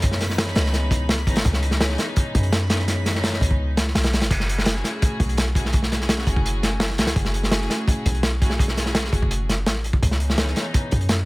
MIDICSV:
0, 0, Header, 1, 5, 480
1, 0, Start_track
1, 0, Key_signature, 3, "minor"
1, 0, Tempo, 357143
1, 32, Time_signature, 4, 2, 24, 8
1, 15121, End_track
2, 0, Start_track
2, 0, Title_t, "Synth texture"
2, 0, Program_c, 0, 99
2, 0, Note_on_c, 0, 83, 88
2, 5802, Note_off_c, 0, 83, 0
2, 15121, End_track
3, 0, Start_track
3, 0, Title_t, "String section"
3, 0, Program_c, 1, 48
3, 37, Note_on_c, 1, 63, 108
3, 39, Note_on_c, 1, 61, 89
3, 40, Note_on_c, 1, 52, 97
3, 40, Note_on_c, 1, 56, 89
3, 40, Note_on_c, 1, 59, 87
3, 1686, Note_off_c, 1, 63, 0
3, 1687, Note_off_c, 1, 56, 0
3, 1687, Note_off_c, 1, 59, 0
3, 1687, Note_off_c, 1, 61, 0
3, 1688, Note_off_c, 1, 52, 0
3, 1707, Note_on_c, 1, 59, 94
3, 1707, Note_on_c, 1, 61, 96
3, 1708, Note_on_c, 1, 63, 112
3, 1710, Note_on_c, 1, 52, 103
3, 1710, Note_on_c, 1, 56, 94
3, 1921, Note_off_c, 1, 59, 0
3, 1921, Note_off_c, 1, 61, 0
3, 1921, Note_off_c, 1, 63, 0
3, 1922, Note_off_c, 1, 52, 0
3, 1922, Note_off_c, 1, 56, 0
3, 1956, Note_on_c, 1, 63, 111
3, 1960, Note_on_c, 1, 52, 100
3, 1960, Note_on_c, 1, 56, 91
3, 1960, Note_on_c, 1, 59, 92
3, 1960, Note_on_c, 1, 61, 91
3, 3605, Note_off_c, 1, 63, 0
3, 3607, Note_off_c, 1, 52, 0
3, 3607, Note_off_c, 1, 59, 0
3, 3607, Note_off_c, 1, 61, 0
3, 3608, Note_off_c, 1, 56, 0
3, 3625, Note_on_c, 1, 59, 92
3, 3625, Note_on_c, 1, 61, 94
3, 3626, Note_on_c, 1, 56, 92
3, 3626, Note_on_c, 1, 63, 114
3, 3628, Note_on_c, 1, 52, 104
3, 3840, Note_off_c, 1, 56, 0
3, 3840, Note_off_c, 1, 59, 0
3, 3840, Note_off_c, 1, 61, 0
3, 3840, Note_off_c, 1, 63, 0
3, 3841, Note_off_c, 1, 52, 0
3, 3866, Note_on_c, 1, 59, 91
3, 3868, Note_on_c, 1, 61, 89
3, 3869, Note_on_c, 1, 56, 89
3, 3869, Note_on_c, 1, 63, 109
3, 3870, Note_on_c, 1, 52, 99
3, 5520, Note_off_c, 1, 59, 0
3, 5521, Note_off_c, 1, 61, 0
3, 5522, Note_off_c, 1, 52, 0
3, 5522, Note_off_c, 1, 56, 0
3, 5522, Note_off_c, 1, 63, 0
3, 5786, Note_on_c, 1, 61, 91
3, 5786, Note_on_c, 1, 68, 108
3, 5789, Note_on_c, 1, 57, 96
3, 5790, Note_on_c, 1, 66, 92
3, 5792, Note_on_c, 1, 64, 91
3, 7440, Note_off_c, 1, 68, 0
3, 7441, Note_off_c, 1, 61, 0
3, 7442, Note_off_c, 1, 57, 0
3, 7442, Note_off_c, 1, 66, 0
3, 7443, Note_off_c, 1, 64, 0
3, 7467, Note_on_c, 1, 68, 109
3, 7469, Note_on_c, 1, 66, 90
3, 7471, Note_on_c, 1, 61, 92
3, 7471, Note_on_c, 1, 64, 93
3, 7472, Note_on_c, 1, 57, 103
3, 7681, Note_off_c, 1, 68, 0
3, 7682, Note_off_c, 1, 66, 0
3, 7683, Note_off_c, 1, 61, 0
3, 7683, Note_off_c, 1, 64, 0
3, 7684, Note_off_c, 1, 57, 0
3, 7709, Note_on_c, 1, 61, 91
3, 7711, Note_on_c, 1, 64, 91
3, 7711, Note_on_c, 1, 68, 109
3, 7713, Note_on_c, 1, 57, 97
3, 7714, Note_on_c, 1, 66, 92
3, 9362, Note_off_c, 1, 61, 0
3, 9363, Note_off_c, 1, 64, 0
3, 9363, Note_off_c, 1, 68, 0
3, 9364, Note_off_c, 1, 57, 0
3, 9364, Note_off_c, 1, 66, 0
3, 9389, Note_on_c, 1, 66, 93
3, 9390, Note_on_c, 1, 68, 117
3, 9391, Note_on_c, 1, 64, 95
3, 9392, Note_on_c, 1, 57, 103
3, 9393, Note_on_c, 1, 61, 92
3, 9602, Note_off_c, 1, 66, 0
3, 9602, Note_off_c, 1, 68, 0
3, 9603, Note_off_c, 1, 57, 0
3, 9603, Note_off_c, 1, 64, 0
3, 9604, Note_off_c, 1, 61, 0
3, 9621, Note_on_c, 1, 57, 100
3, 9621, Note_on_c, 1, 61, 93
3, 9623, Note_on_c, 1, 68, 111
3, 9625, Note_on_c, 1, 64, 92
3, 9626, Note_on_c, 1, 66, 89
3, 11278, Note_off_c, 1, 57, 0
3, 11278, Note_off_c, 1, 61, 0
3, 11279, Note_off_c, 1, 68, 0
3, 11280, Note_off_c, 1, 64, 0
3, 11280, Note_off_c, 1, 66, 0
3, 11308, Note_on_c, 1, 66, 93
3, 11310, Note_on_c, 1, 64, 93
3, 11311, Note_on_c, 1, 57, 104
3, 11311, Note_on_c, 1, 61, 93
3, 11311, Note_on_c, 1, 68, 116
3, 11521, Note_off_c, 1, 66, 0
3, 11523, Note_off_c, 1, 57, 0
3, 11523, Note_off_c, 1, 61, 0
3, 11523, Note_off_c, 1, 64, 0
3, 11523, Note_off_c, 1, 68, 0
3, 11552, Note_on_c, 1, 57, 98
3, 11552, Note_on_c, 1, 66, 89
3, 11553, Note_on_c, 1, 61, 94
3, 11553, Note_on_c, 1, 68, 109
3, 11554, Note_on_c, 1, 64, 92
3, 13203, Note_off_c, 1, 66, 0
3, 13204, Note_off_c, 1, 57, 0
3, 13204, Note_off_c, 1, 61, 0
3, 13204, Note_off_c, 1, 64, 0
3, 13204, Note_off_c, 1, 68, 0
3, 13474, Note_on_c, 1, 59, 88
3, 13475, Note_on_c, 1, 56, 91
3, 13476, Note_on_c, 1, 61, 88
3, 13477, Note_on_c, 1, 52, 99
3, 13477, Note_on_c, 1, 63, 108
3, 15121, Note_off_c, 1, 52, 0
3, 15121, Note_off_c, 1, 56, 0
3, 15121, Note_off_c, 1, 59, 0
3, 15121, Note_off_c, 1, 61, 0
3, 15121, Note_off_c, 1, 63, 0
3, 15121, End_track
4, 0, Start_track
4, 0, Title_t, "808-style bass"
4, 0, Program_c, 2, 38
4, 0, Note_on_c, 2, 42, 104
4, 735, Note_off_c, 2, 42, 0
4, 750, Note_on_c, 2, 37, 101
4, 1706, Note_on_c, 2, 32, 96
4, 1726, Note_off_c, 2, 37, 0
4, 1925, Note_off_c, 2, 32, 0
4, 1950, Note_on_c, 2, 37, 104
4, 2652, Note_off_c, 2, 37, 0
4, 3156, Note_on_c, 2, 42, 107
4, 4575, Note_off_c, 2, 42, 0
4, 4585, Note_on_c, 2, 37, 102
4, 5289, Note_off_c, 2, 37, 0
4, 5309, Note_on_c, 2, 35, 107
4, 5668, Note_on_c, 2, 32, 89
4, 5689, Note_off_c, 2, 35, 0
4, 5778, Note_off_c, 2, 32, 0
4, 5788, Note_on_c, 2, 30, 104
4, 6491, Note_off_c, 2, 30, 0
4, 6988, Note_on_c, 2, 35, 107
4, 8411, Note_off_c, 2, 35, 0
4, 8423, Note_on_c, 2, 30, 100
4, 9389, Note_on_c, 2, 37, 100
4, 9410, Note_off_c, 2, 30, 0
4, 9607, Note_off_c, 2, 37, 0
4, 9624, Note_on_c, 2, 30, 106
4, 10329, Note_off_c, 2, 30, 0
4, 10830, Note_on_c, 2, 35, 104
4, 12252, Note_off_c, 2, 35, 0
4, 12265, Note_on_c, 2, 30, 103
4, 12990, Note_on_c, 2, 33, 104
4, 13010, Note_off_c, 2, 30, 0
4, 13452, Note_off_c, 2, 33, 0
4, 13473, Note_on_c, 2, 37, 103
4, 14174, Note_off_c, 2, 37, 0
4, 14680, Note_on_c, 2, 42, 102
4, 15121, Note_off_c, 2, 42, 0
4, 15121, End_track
5, 0, Start_track
5, 0, Title_t, "Drums"
5, 28, Note_on_c, 9, 42, 91
5, 45, Note_on_c, 9, 36, 113
5, 154, Note_on_c, 9, 38, 53
5, 163, Note_off_c, 9, 42, 0
5, 179, Note_off_c, 9, 36, 0
5, 275, Note_on_c, 9, 42, 74
5, 282, Note_off_c, 9, 38, 0
5, 282, Note_on_c, 9, 38, 43
5, 398, Note_off_c, 9, 38, 0
5, 398, Note_on_c, 9, 38, 35
5, 409, Note_off_c, 9, 42, 0
5, 515, Note_off_c, 9, 38, 0
5, 515, Note_on_c, 9, 38, 116
5, 516, Note_on_c, 9, 42, 89
5, 628, Note_off_c, 9, 38, 0
5, 628, Note_on_c, 9, 38, 49
5, 650, Note_off_c, 9, 42, 0
5, 744, Note_on_c, 9, 42, 82
5, 754, Note_off_c, 9, 38, 0
5, 754, Note_on_c, 9, 38, 104
5, 876, Note_off_c, 9, 38, 0
5, 876, Note_on_c, 9, 38, 45
5, 878, Note_off_c, 9, 42, 0
5, 985, Note_off_c, 9, 38, 0
5, 985, Note_on_c, 9, 38, 48
5, 991, Note_on_c, 9, 42, 55
5, 1120, Note_off_c, 9, 38, 0
5, 1126, Note_off_c, 9, 42, 0
5, 1221, Note_on_c, 9, 36, 111
5, 1230, Note_on_c, 9, 42, 80
5, 1356, Note_off_c, 9, 36, 0
5, 1365, Note_off_c, 9, 42, 0
5, 1466, Note_on_c, 9, 38, 117
5, 1485, Note_on_c, 9, 42, 86
5, 1600, Note_off_c, 9, 38, 0
5, 1619, Note_off_c, 9, 42, 0
5, 1706, Note_on_c, 9, 36, 93
5, 1710, Note_on_c, 9, 42, 65
5, 1823, Note_off_c, 9, 42, 0
5, 1823, Note_on_c, 9, 42, 78
5, 1837, Note_on_c, 9, 38, 114
5, 1840, Note_off_c, 9, 36, 0
5, 1942, Note_off_c, 9, 42, 0
5, 1942, Note_on_c, 9, 42, 80
5, 1951, Note_on_c, 9, 36, 114
5, 1972, Note_off_c, 9, 38, 0
5, 2060, Note_on_c, 9, 38, 57
5, 2077, Note_off_c, 9, 42, 0
5, 2086, Note_off_c, 9, 36, 0
5, 2185, Note_on_c, 9, 42, 73
5, 2194, Note_off_c, 9, 38, 0
5, 2299, Note_on_c, 9, 38, 50
5, 2319, Note_off_c, 9, 42, 0
5, 2426, Note_off_c, 9, 38, 0
5, 2426, Note_on_c, 9, 38, 112
5, 2432, Note_on_c, 9, 42, 80
5, 2548, Note_off_c, 9, 38, 0
5, 2548, Note_on_c, 9, 38, 47
5, 2566, Note_off_c, 9, 42, 0
5, 2664, Note_on_c, 9, 42, 71
5, 2668, Note_off_c, 9, 38, 0
5, 2668, Note_on_c, 9, 38, 61
5, 2798, Note_off_c, 9, 42, 0
5, 2802, Note_off_c, 9, 38, 0
5, 2905, Note_on_c, 9, 42, 86
5, 2912, Note_on_c, 9, 36, 103
5, 3039, Note_off_c, 9, 42, 0
5, 3047, Note_off_c, 9, 36, 0
5, 3156, Note_on_c, 9, 42, 69
5, 3158, Note_on_c, 9, 36, 91
5, 3269, Note_off_c, 9, 42, 0
5, 3269, Note_on_c, 9, 42, 42
5, 3293, Note_off_c, 9, 36, 0
5, 3394, Note_on_c, 9, 38, 121
5, 3395, Note_off_c, 9, 42, 0
5, 3395, Note_on_c, 9, 42, 92
5, 3528, Note_off_c, 9, 38, 0
5, 3530, Note_off_c, 9, 42, 0
5, 3627, Note_on_c, 9, 38, 95
5, 3627, Note_on_c, 9, 42, 86
5, 3741, Note_off_c, 9, 38, 0
5, 3741, Note_on_c, 9, 38, 37
5, 3761, Note_off_c, 9, 42, 0
5, 3868, Note_off_c, 9, 38, 0
5, 3868, Note_on_c, 9, 38, 50
5, 3870, Note_on_c, 9, 42, 61
5, 4002, Note_off_c, 9, 38, 0
5, 4004, Note_off_c, 9, 42, 0
5, 4107, Note_on_c, 9, 38, 43
5, 4114, Note_on_c, 9, 42, 68
5, 4235, Note_off_c, 9, 38, 0
5, 4235, Note_on_c, 9, 38, 35
5, 4248, Note_off_c, 9, 42, 0
5, 4350, Note_off_c, 9, 38, 0
5, 4350, Note_on_c, 9, 38, 100
5, 4360, Note_on_c, 9, 42, 84
5, 4479, Note_off_c, 9, 38, 0
5, 4479, Note_on_c, 9, 38, 47
5, 4494, Note_off_c, 9, 42, 0
5, 4586, Note_on_c, 9, 36, 99
5, 4601, Note_on_c, 9, 42, 74
5, 4613, Note_off_c, 9, 38, 0
5, 4713, Note_off_c, 9, 36, 0
5, 4713, Note_on_c, 9, 36, 100
5, 4735, Note_off_c, 9, 42, 0
5, 4847, Note_off_c, 9, 36, 0
5, 5071, Note_on_c, 9, 38, 103
5, 5072, Note_on_c, 9, 42, 81
5, 5200, Note_off_c, 9, 38, 0
5, 5200, Note_on_c, 9, 38, 39
5, 5206, Note_off_c, 9, 42, 0
5, 5313, Note_on_c, 9, 42, 88
5, 5314, Note_off_c, 9, 38, 0
5, 5314, Note_on_c, 9, 38, 110
5, 5424, Note_off_c, 9, 42, 0
5, 5424, Note_on_c, 9, 42, 83
5, 5435, Note_off_c, 9, 38, 0
5, 5435, Note_on_c, 9, 38, 104
5, 5557, Note_off_c, 9, 42, 0
5, 5557, Note_on_c, 9, 42, 74
5, 5560, Note_off_c, 9, 38, 0
5, 5560, Note_on_c, 9, 38, 111
5, 5665, Note_off_c, 9, 42, 0
5, 5665, Note_on_c, 9, 42, 77
5, 5666, Note_off_c, 9, 38, 0
5, 5666, Note_on_c, 9, 38, 102
5, 5788, Note_off_c, 9, 42, 0
5, 5788, Note_on_c, 9, 36, 101
5, 5788, Note_on_c, 9, 42, 86
5, 5792, Note_on_c, 9, 49, 86
5, 5800, Note_off_c, 9, 38, 0
5, 5913, Note_on_c, 9, 38, 53
5, 5922, Note_off_c, 9, 36, 0
5, 5922, Note_off_c, 9, 42, 0
5, 5926, Note_off_c, 9, 49, 0
5, 6040, Note_on_c, 9, 42, 66
5, 6047, Note_off_c, 9, 38, 0
5, 6160, Note_on_c, 9, 38, 52
5, 6174, Note_off_c, 9, 42, 0
5, 6255, Note_on_c, 9, 42, 89
5, 6267, Note_off_c, 9, 38, 0
5, 6267, Note_on_c, 9, 38, 121
5, 6377, Note_off_c, 9, 38, 0
5, 6377, Note_on_c, 9, 38, 48
5, 6390, Note_off_c, 9, 42, 0
5, 6508, Note_off_c, 9, 38, 0
5, 6508, Note_on_c, 9, 38, 57
5, 6518, Note_on_c, 9, 42, 65
5, 6642, Note_off_c, 9, 38, 0
5, 6652, Note_off_c, 9, 42, 0
5, 6749, Note_on_c, 9, 42, 92
5, 6752, Note_on_c, 9, 36, 120
5, 6884, Note_off_c, 9, 42, 0
5, 6886, Note_off_c, 9, 36, 0
5, 6988, Note_on_c, 9, 36, 108
5, 6989, Note_on_c, 9, 42, 72
5, 7113, Note_off_c, 9, 42, 0
5, 7113, Note_on_c, 9, 42, 47
5, 7122, Note_off_c, 9, 36, 0
5, 7223, Note_off_c, 9, 42, 0
5, 7223, Note_on_c, 9, 42, 86
5, 7233, Note_on_c, 9, 38, 115
5, 7358, Note_off_c, 9, 42, 0
5, 7368, Note_off_c, 9, 38, 0
5, 7463, Note_on_c, 9, 36, 96
5, 7476, Note_on_c, 9, 42, 66
5, 7595, Note_on_c, 9, 38, 49
5, 7597, Note_off_c, 9, 36, 0
5, 7610, Note_off_c, 9, 42, 0
5, 7698, Note_on_c, 9, 42, 82
5, 7710, Note_on_c, 9, 36, 111
5, 7729, Note_off_c, 9, 38, 0
5, 7830, Note_on_c, 9, 38, 50
5, 7833, Note_off_c, 9, 42, 0
5, 7844, Note_off_c, 9, 36, 0
5, 7954, Note_on_c, 9, 42, 72
5, 7956, Note_off_c, 9, 38, 0
5, 7956, Note_on_c, 9, 38, 46
5, 8076, Note_off_c, 9, 38, 0
5, 8076, Note_on_c, 9, 38, 37
5, 8088, Note_off_c, 9, 42, 0
5, 8185, Note_off_c, 9, 38, 0
5, 8185, Note_on_c, 9, 38, 107
5, 8193, Note_on_c, 9, 42, 97
5, 8307, Note_off_c, 9, 38, 0
5, 8307, Note_on_c, 9, 38, 52
5, 8327, Note_off_c, 9, 42, 0
5, 8425, Note_on_c, 9, 36, 91
5, 8433, Note_on_c, 9, 42, 71
5, 8441, Note_off_c, 9, 38, 0
5, 8554, Note_off_c, 9, 36, 0
5, 8554, Note_on_c, 9, 36, 97
5, 8567, Note_off_c, 9, 42, 0
5, 8678, Note_on_c, 9, 42, 92
5, 8688, Note_off_c, 9, 36, 0
5, 8813, Note_off_c, 9, 42, 0
5, 8913, Note_on_c, 9, 38, 59
5, 8914, Note_on_c, 9, 42, 66
5, 9047, Note_off_c, 9, 38, 0
5, 9048, Note_off_c, 9, 42, 0
5, 9139, Note_on_c, 9, 38, 127
5, 9152, Note_on_c, 9, 42, 82
5, 9273, Note_off_c, 9, 38, 0
5, 9277, Note_on_c, 9, 38, 48
5, 9286, Note_off_c, 9, 42, 0
5, 9383, Note_on_c, 9, 42, 82
5, 9393, Note_off_c, 9, 38, 0
5, 9393, Note_on_c, 9, 38, 104
5, 9501, Note_off_c, 9, 38, 0
5, 9501, Note_on_c, 9, 38, 104
5, 9507, Note_off_c, 9, 42, 0
5, 9507, Note_on_c, 9, 42, 85
5, 9623, Note_on_c, 9, 36, 118
5, 9627, Note_off_c, 9, 42, 0
5, 9627, Note_on_c, 9, 42, 84
5, 9635, Note_off_c, 9, 38, 0
5, 9740, Note_on_c, 9, 38, 59
5, 9758, Note_off_c, 9, 36, 0
5, 9761, Note_off_c, 9, 42, 0
5, 9865, Note_on_c, 9, 42, 70
5, 9874, Note_off_c, 9, 38, 0
5, 9991, Note_on_c, 9, 38, 49
5, 10000, Note_off_c, 9, 42, 0
5, 10099, Note_off_c, 9, 38, 0
5, 10099, Note_on_c, 9, 38, 104
5, 10101, Note_on_c, 9, 42, 92
5, 10226, Note_off_c, 9, 38, 0
5, 10226, Note_on_c, 9, 38, 43
5, 10236, Note_off_c, 9, 42, 0
5, 10349, Note_off_c, 9, 38, 0
5, 10349, Note_on_c, 9, 38, 54
5, 10358, Note_on_c, 9, 42, 70
5, 10483, Note_off_c, 9, 38, 0
5, 10492, Note_off_c, 9, 42, 0
5, 10585, Note_on_c, 9, 36, 118
5, 10596, Note_on_c, 9, 42, 83
5, 10720, Note_off_c, 9, 36, 0
5, 10730, Note_off_c, 9, 42, 0
5, 10828, Note_on_c, 9, 42, 76
5, 10830, Note_on_c, 9, 36, 105
5, 10948, Note_off_c, 9, 42, 0
5, 10948, Note_on_c, 9, 42, 47
5, 10965, Note_off_c, 9, 36, 0
5, 11063, Note_on_c, 9, 38, 119
5, 11071, Note_off_c, 9, 42, 0
5, 11071, Note_on_c, 9, 42, 87
5, 11197, Note_off_c, 9, 38, 0
5, 11205, Note_off_c, 9, 42, 0
5, 11312, Note_on_c, 9, 36, 98
5, 11312, Note_on_c, 9, 42, 73
5, 11423, Note_on_c, 9, 38, 53
5, 11446, Note_off_c, 9, 36, 0
5, 11446, Note_off_c, 9, 42, 0
5, 11551, Note_on_c, 9, 36, 103
5, 11557, Note_off_c, 9, 38, 0
5, 11561, Note_on_c, 9, 42, 83
5, 11667, Note_on_c, 9, 38, 51
5, 11685, Note_off_c, 9, 36, 0
5, 11696, Note_off_c, 9, 42, 0
5, 11789, Note_off_c, 9, 38, 0
5, 11789, Note_on_c, 9, 38, 47
5, 11794, Note_on_c, 9, 42, 63
5, 11905, Note_off_c, 9, 38, 0
5, 11905, Note_on_c, 9, 38, 39
5, 11928, Note_off_c, 9, 42, 0
5, 12025, Note_off_c, 9, 38, 0
5, 12025, Note_on_c, 9, 38, 115
5, 12029, Note_on_c, 9, 42, 89
5, 12151, Note_off_c, 9, 38, 0
5, 12151, Note_on_c, 9, 38, 47
5, 12163, Note_off_c, 9, 42, 0
5, 12267, Note_on_c, 9, 36, 98
5, 12278, Note_on_c, 9, 42, 62
5, 12286, Note_off_c, 9, 38, 0
5, 12397, Note_off_c, 9, 36, 0
5, 12397, Note_on_c, 9, 36, 92
5, 12412, Note_off_c, 9, 42, 0
5, 12511, Note_on_c, 9, 42, 91
5, 12532, Note_off_c, 9, 36, 0
5, 12645, Note_off_c, 9, 42, 0
5, 12760, Note_on_c, 9, 38, 60
5, 12760, Note_on_c, 9, 42, 66
5, 12894, Note_off_c, 9, 38, 0
5, 12894, Note_off_c, 9, 42, 0
5, 12989, Note_on_c, 9, 38, 123
5, 13000, Note_on_c, 9, 42, 87
5, 13108, Note_off_c, 9, 38, 0
5, 13108, Note_on_c, 9, 38, 40
5, 13135, Note_off_c, 9, 42, 0
5, 13229, Note_on_c, 9, 42, 71
5, 13242, Note_off_c, 9, 38, 0
5, 13349, Note_on_c, 9, 36, 95
5, 13364, Note_off_c, 9, 42, 0
5, 13475, Note_off_c, 9, 36, 0
5, 13475, Note_on_c, 9, 36, 109
5, 13476, Note_on_c, 9, 42, 87
5, 13592, Note_on_c, 9, 38, 56
5, 13609, Note_off_c, 9, 36, 0
5, 13611, Note_off_c, 9, 42, 0
5, 13709, Note_on_c, 9, 42, 66
5, 13726, Note_off_c, 9, 38, 0
5, 13838, Note_on_c, 9, 38, 56
5, 13844, Note_off_c, 9, 42, 0
5, 13948, Note_on_c, 9, 42, 94
5, 13949, Note_off_c, 9, 38, 0
5, 13949, Note_on_c, 9, 38, 104
5, 14062, Note_off_c, 9, 38, 0
5, 14062, Note_on_c, 9, 38, 44
5, 14082, Note_off_c, 9, 42, 0
5, 14192, Note_on_c, 9, 42, 70
5, 14197, Note_off_c, 9, 38, 0
5, 14201, Note_on_c, 9, 38, 59
5, 14326, Note_off_c, 9, 42, 0
5, 14335, Note_off_c, 9, 38, 0
5, 14437, Note_on_c, 9, 42, 88
5, 14440, Note_on_c, 9, 36, 112
5, 14571, Note_off_c, 9, 42, 0
5, 14574, Note_off_c, 9, 36, 0
5, 14668, Note_on_c, 9, 42, 73
5, 14680, Note_on_c, 9, 36, 101
5, 14794, Note_off_c, 9, 42, 0
5, 14794, Note_on_c, 9, 42, 41
5, 14814, Note_off_c, 9, 36, 0
5, 14902, Note_off_c, 9, 42, 0
5, 14902, Note_on_c, 9, 42, 91
5, 14908, Note_on_c, 9, 38, 124
5, 15037, Note_off_c, 9, 42, 0
5, 15043, Note_off_c, 9, 38, 0
5, 15121, End_track
0, 0, End_of_file